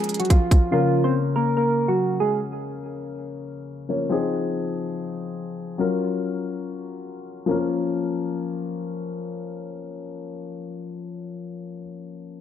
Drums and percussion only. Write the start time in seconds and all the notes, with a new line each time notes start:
0.04 closed hi-hat
0.09 closed hi-hat
0.14 closed hi-hat
0.20 closed hi-hat
0.25 closed hi-hat
0.30 kick, closed hi-hat
0.51 kick, closed hi-hat